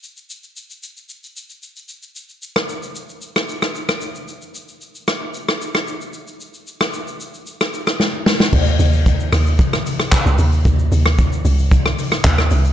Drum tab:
CC |----------------|----------------|----------------|----------------|
HH |----------------|----------------|----------------|----------------|
SH |xxxxxxxxxxxxxxxx|xxxxxxxxxxxxxxxx|xxxxxxx-xxxxxxxx|xxxxxxxxxxxx----|
CP |----------------|----------------|----------------|----------------|
SD |----------------|---r-----r-r-r--|------r--r-r----|---r-----r-ro-oo|
BD |----------------|----------------|----------------|----------------|

CC |x---------------|----------------|
HH |--o-p-o-p-o-p-o-|p-o-p-o-p-o-p-o-|
SH |-xxxxxxxxxxxxxxx|xxxxxxxxxxxxxxxx|
CP |------------x---|------------x---|
SD |------r--r-r----|---r-----r-r-r--|
BD |o---o---o---o---|o---o---o---o---|